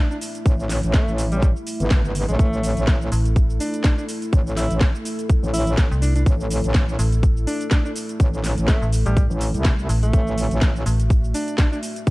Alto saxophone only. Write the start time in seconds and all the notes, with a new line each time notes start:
0.11 D4
0.94 A3
1.32 G3
2.29 A3
3.60 D4
3.84 D4
3.98 D4
4.57 E4
5.54 E4
6.02 D4
6.16 D4
7.47 D4
7.71 D4
7.85 D4
8.68 A3
9.06 G3
10.03 A3
11.34 D4
11.58 D4
11.72 D4